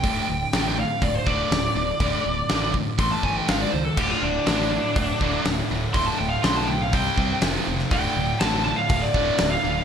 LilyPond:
<<
  \new Staff \with { instrumentName = "Lead electric guitar" } { \time 4/4 \key d \minor \tempo 4 = 122 g''4. f''8 d''16 c''16 d''4.~ | d''4. r8 c'''16 a''16 gis''16 g''16 f''16 d''16 c''16 a'16 | g'16 f'16 d'8 d'2 r4 | c'''16 a''16 g''16 f''16 c'''16 a''16 g''16 f''16 g''4 r4 |
g''4 a''8 a''16 f''8 d''4 f''8. | }
  \new Staff \with { instrumentName = "Distorted electric guitar" } { \clef bass \time 4/4 \key d \minor <d, a, d>8 <d, a,>8 <d, a, d>8 <d, a,>8 <d, a,>8 <d, a, d>8 <d, a,>8 <d, a,>8 | <d, a, d>8 <d, a,>8 <d, a, d>8 <d, a,>8 <a, e a>8 <a, e a>8 <gis, dis gis>8 <gis, dis>8 | <d, a, d>8 <d, a,>8 <d, a, d>8 <d, a,>8 <d, a,>8 <d, a, d>8 <d, a,>8 <d, a,>8 | <d, a, d>8 <d, a,>8 <d, a, d>8 <d, a,>8 <c g c'>8 <c g c'>8 <f, c f>8 <f, c>8 |
<d, a, d>8 <d, a,>8 <d, a, d>8 <d, a,>8 <d, a,>8 <d, a, d>8 <d, a,>8 <d, a,>8 | }
  \new Staff \with { instrumentName = "Distorted electric guitar" } { \clef bass \time 4/4 \key d \minor <d, a, d>8 <d, a,>8 <d, a, d>8 <d, a,>8 <d, a,>8 <d, a, d>8 <d, a,>8 <d, a,>8 | <d, a, d>8 <d, a,>8 <d, a, d>8 <d, a,>8 <a, e a>8 <a, e a>8 <gis, dis gis>8 <gis, dis>8 | <d, a, d>8 <d, a,>8 <d, a, d>8 <d, a,>8 <d, a,>8 <d, a, d>8 <d, a,>8 <d, a,>8 | <d, a, d>8 <d, a,>8 <d, a, d>8 <d, a,>8 <c g c'>8 <c g c'>8 <f, c f>8 <f, c>8 |
<d, a, d>8 <d, a,>8 <d, a, d>8 <d, a,>8 <d, a,>8 <d, a, d>8 <d, a,>8 <d, a,>8 | }
  \new Staff \with { instrumentName = "Distorted electric guitar" } { \clef bass \time 4/4 \key d \minor r1 | r1 | <d, a, d>4 <d, a, d>8 <d, a, d>8 <d, a, d>4 <d, a, d>8 <d, a, d>8 | <d, a, d>4 <d, a, d>8 <d, a, d>8 <c g c'>4 <f, c f>8 <f, c f>8 |
<d, a, d>4 <d, a, d>8 <d, a, d>8 <d, a, d>4 <d, a, d>8 <d, a, d>8 | }
  \new Staff \with { instrumentName = "Fingered electric bass" } { \clef bass \time 4/4 \key d \minor d,,8 d,,8 a,,4 d,,8 d,,8 d,,8 d,,8 | d,,8 d,,8 a,,4 a,,8 g,,8 gis,,8 cis,8 | d,,8 d,,8 a,,4 d,,8 d,,8 d,,8 d,,8 | d,,8 d,,8 b,,4 c,8 c,8 f,,8 f,,8 |
d,,8 d,,8 a,,4 d,,8 d,,8 d,,8 d,,8 | }
  \new DrumStaff \with { instrumentName = "Drums" } \drummode { \time 4/4 <hho bd>4 <hho sn>4 <hho bd>8 bd8 <hho sn>4 | <hho bd>4 <hho sn>8 bd8 <hho bd>8 bd8 <hho sn>4 | <cymc bd>4 <hho sn>4 <hho bd>8 bd8 <hho sn>4 | <hho bd>4 <hho sn>4 <hho bd>8 bd8 <hho sn>8. sn16 |
<hho bd>4 <hho sn>4 <hho bd>8 bd8 <hho sn>4 | }
>>